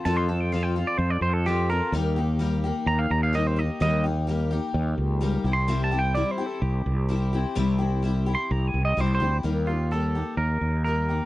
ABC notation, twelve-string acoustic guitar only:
X:1
M:4/4
L:1/8
Q:1/4=128
K:Eblyd
V:1 name="Twelve-string acoustic guitar"
[F,CFA] [CFA] [F,CFA] [CFA]3 [F,CFA] [CFA] | [E,G,B,EG] [B,EG] [G,B,EG] [B,EG]3 [G,B,EG] [B,EG] | [E,G,B,EG] [B,EG] [G,B,EG] [B,EG]3 [G,B,EG] [C=EG] | [C,G,C=EG] [CEG] [G,CEG] [CEG]3 [G,CEG] [CEG] |
[C,G,C=EG] [CEG] [G,CEG] [CEG]3 [G,CEG] [CEG] | [E,G,B,EG] [B,EG] [G,B,EG] [B,EG]3 [G,B,EG] [B,EG] |]